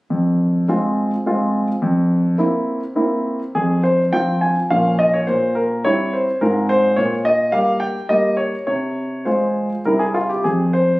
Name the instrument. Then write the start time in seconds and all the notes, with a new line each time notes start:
grand piano
0.10 F2
0.68 G#3 C4 F4
1.26 G#3 C4 F4
1.82 F2
2.38 A#3 C4 E4
2.95 A#3 C4 E4
3.55 F2 G#4
3.83 C5
4.13 F3 C4 F4 G5
4.41 G#5
4.70 A#2 F3 C#4 F4 F5
4.99 D#5
5.14 C#5
5.27 A#2 C5
5.55 A#4
5.85 G3 C4 E4 C#5
6.13 C5
6.41 G#2 G#3 C4 F4 A#4
6.69 C5
6.96 A#2 C#5
7.25 D#5
7.52 G3 A#3 G4 F5
7.80 G5
8.09 G3 A#3 G4 D#5
8.37 C#5
8.67 C3 C#5
9.25 G#3 F4 C5
9.85 C3 G3 C4 E4 A#4
9.99 G#4
10.14 F4
10.29 G4
10.44 F2 G#4
10.73 C5